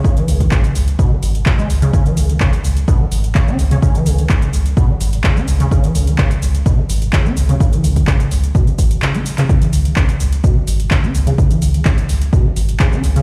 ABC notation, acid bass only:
X:1
M:4/4
L:1/16
Q:1/4=127
K:C#m
V:1 name="Acid bass" clef=bass
C, E, C, D, C, z3 B,, E, z2 C, G, z C, | C, E, C, D, C, z3 B,, E, z2 C, C z C, | C, E, C, D, C, z3 B,, E, z2 C, C z C, | C, E, C, D, C, z3 B,, E, z2 C, C z C, |
C, E, C, D, C, z3 B,, E, z2 C, C z C, | C, E, C, D, C, z3 B,, E, z2 C, C z C, | C, E, C, D, C, z3 B,, E, z2 C, C z C, |]